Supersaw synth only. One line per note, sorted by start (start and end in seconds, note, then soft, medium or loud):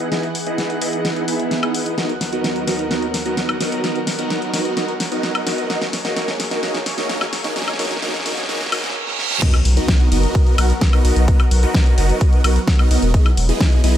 0.12 0.27 B3 medium
0.12 0.27 D#4 medium
0.12 0.27 E4 medium
0.12 0.27 G#4 medium
0.12 0.27 D#5 medium
0.47 0.79 B3 medium
0.47 0.79 D#4 medium
0.47 0.79 E4 medium
0.47 0.79 G#4 medium
0.47 0.79 D#5 medium
0.81 1.25 B3 medium
0.81 1.25 D#4 medium
0.81 1.25 E4 medium
0.81 1.25 G#4 medium
0.81 1.25 D#5 loud
1.28 1.60 B3 medium
1.28 1.60 D#4 medium
1.28 1.60 E4 medium
1.28 1.60 G#4 medium
1.28 1.60 E5 medium
1.63 1.95 B3 medium
1.63 1.95 D#4 medium
1.63 1.95 E4 medium
1.63 1.95 G#4 medium
1.63 1.95 D#5 loud
1.98 2.13 B3 medium
1.98 2.13 D#4 medium
1.98 2.13 F#4 medium
1.98 2.13 A#4 medium
1.98 2.13 D#5 medium
2.33 2.65 B3 medium
2.33 2.65 D#4 medium
2.33 2.65 F#4 medium
2.33 2.65 A#4 medium
2.33 2.65 D#5 medium
2.68 2.89 B3 medium
2.68 2.89 D#4 medium
2.68 2.89 F#4 medium
2.68 2.89 A#4 medium
2.68 2.89 D#5 loud
2.91 3.06 B3 medium
2.91 3.06 D#4 medium
2.91 3.06 F#4 medium
2.91 3.06 A#4 medium
2.91 3.06 D#5 medium
3.26 3.58 B3 medium
3.26 3.58 D#4 medium
3.26 3.58 F#4 medium
3.26 3.58 A#4 medium
3.26 3.58 D#5 medium
3.61 3.82 B3 medium
3.61 3.82 D#4 medium
3.61 3.82 F#4 medium
3.61 3.82 A#4 medium
3.61 3.82 D#5 loud
3.84 3.99 B3 medium
3.84 3.99 D#4 medium
3.84 3.99 F#4 medium
3.84 3.99 A#4 medium
3.84 3.99 D#5 medium
4.19 4.51 B3 medium
4.19 4.51 D#4 medium
4.19 4.51 F#4 medium
4.19 4.51 A#4 medium
4.19 4.51 D#5 medium
4.53 4.75 B3 medium
4.53 4.75 D#4 medium
4.53 4.75 F#4 medium
4.53 4.75 A#4 medium
4.53 4.75 D#5 loud
4.77 4.92 B3 medium
4.77 4.92 D#4 medium
4.77 4.92 F#4 medium
4.77 4.92 A#4 medium
4.77 4.92 D#5 medium
5.12 5.44 B3 medium
5.12 5.44 D#4 medium
5.12 5.44 F#4 medium
5.12 5.44 A#4 medium
5.12 5.44 D#5 medium
5.47 5.68 B3 medium
5.47 5.68 D#4 medium
5.47 5.68 F#4 medium
5.47 5.68 A#4 medium
5.47 5.68 D#5 loud
5.70 5.85 A#3 medium
5.70 5.85 D#4 medium
5.70 5.85 F#4 medium
5.70 5.85 A#4 medium
5.70 5.85 D#5 loud
6.05 6.14 A#3 medium
6.05 6.14 D#4 medium
6.05 6.14 F#4 medium
6.05 6.14 A#4 medium
6.05 6.15 D#5 medium
6.16 6.31 A#3 medium
6.16 6.31 D#4 medium
6.16 6.31 F#4 medium
6.16 6.31 A#4 medium
6.16 6.31 D#5 medium
6.51 6.61 A#3 medium
6.51 6.61 D#4 medium
6.51 6.61 F#4 medium
6.51 6.61 A#4 medium
6.51 6.61 D#5 medium
6.63 6.78 A#3 medium
6.63 6.78 D#4 medium
6.63 6.78 F#4 medium
6.63 6.78 A#4 medium
6.63 6.78 D#5 loud
6.98 7.07 A#3 medium
6.98 7.07 D#4 medium
6.98 7.07 F#4 medium
6.98 7.07 A#4 medium
6.98 7.07 D#5 medium
7.09 7.24 A#3 medium
7.09 7.24 D#4 medium
7.09 7.24 F#4 medium
7.09 7.24 A#4 medium
7.09 7.24 D#5 medium
7.44 7.54 A#3 medium
7.44 7.54 D#4 medium
7.44 7.54 F#4 medium
7.44 7.54 A#4 medium
7.44 7.54 D#5 medium
7.56 7.71 A#3 medium
7.56 7.71 D#4 medium
7.56 7.71 F#4 medium
7.56 7.71 A#4 medium
7.56 7.71 D#5 loud
7.79 7.94 A#3 medium
7.79 7.94 D#4 medium
7.79 7.94 F#4 medium
7.79 7.94 A#4 medium
7.79 7.94 D#5 loud
8.02 8.17 A#3 medium
8.02 8.17 D#4 medium
8.02 8.17 F#4 medium
8.02 8.17 A#4 medium
8.02 8.17 D#5 loud
8.26 8.41 A#3 medium
8.26 8.41 D#4 medium
8.26 8.41 F#4 medium
8.26 8.41 A#4 medium
8.26 8.41 D#5 loud
8.49 8.64 A#3 medium
8.49 8.64 D#4 medium
8.49 8.64 F#4 medium
8.49 8.64 A#4 medium
8.49 8.64 D#5 loud
8.72 8.87 A#3 medium
8.72 8.87 D#4 medium
8.72 8.87 F#4 medium
8.72 8.87 A#4 medium
8.72 8.87 D#5 medium
9.42 9.57 B3 medium
9.42 9.57 D#4 medium
9.42 9.57 F#4 medium
9.42 9.57 A#4 medium
9.42 9.57 D#5 loud
9.77 10.09 B3 medium
9.77 10.09 D#4 medium
9.77 10.09 F#4 medium
9.77 10.09 A#4 medium
9.77 10.09 D#5 medium
10.12 10.55 B3 loud
10.12 10.55 D#4 medium
10.12 10.55 F#4 medium
10.12 10.55 A#4 medium
10.12 10.55 D#5 loud
10.58 10.73 B3 loud
10.58 10.73 D#4 medium
10.58 10.73 F#4 medium
10.58 10.73 A#4 medium
10.58 10.73 F#5 loud
10.93 11.03 B3 loud
10.93 11.03 D#4 medium
10.93 11.03 F#4 medium
10.93 11.03 A#4 medium
10.93 11.03 D#5 loud
11.05 11.25 B3 loud
11.05 11.25 D#4 medium
11.05 11.25 F#4 medium
11.05 11.25 A#4 medium
11.05 11.25 D#5 loud
11.28 11.43 B3 medium
11.28 11.43 F#4 medium
11.63 11.95 B3 medium
11.63 11.95 D#4 medium
11.63 11.95 F#4 medium
11.63 11.95 A#4 medium
11.63 11.95 D#5 medium
11.98 12.42 B3 medium
11.98 12.41 D#4 medium
11.98 12.41 F#4 medium
11.98 12.41 A#4 medium
11.98 12.41 D#5 loud
12.44 12.59 B3 loud
12.44 12.59 D#4 medium
12.44 12.59 F#4 medium
12.44 12.59 A#4 medium
12.44 12.59 F#5 loud
12.79 12.89 B3 loud
12.79 12.89 D#4 medium
12.79 12.89 F#4 medium
12.79 12.89 A#4 medium
12.79 12.89 D#5 loud
12.91 13.11 B3 loud
12.91 13.11 D#4 loud
12.91 13.11 F#4 medium
12.91 13.11 A#4 medium
12.91 13.11 D#5 loud
13.14 13.29 B3 medium
13.14 13.29 D#4 medium
13.14 13.29 E4 medium
13.14 13.29 G#4 medium
13.14 13.29 D#5 loud
13.49 13.81 B3 medium
13.49 13.81 D#4 medium
13.49 13.81 E4 medium
13.49 13.81 G#4 medium
13.49 13.81 D#5 medium
13.84 13.97 B3 loud
13.84 13.97 D#4 medium
13.84 13.97 E4 medium
13.84 13.97 G#4 medium
13.84 13.97 D#5 loud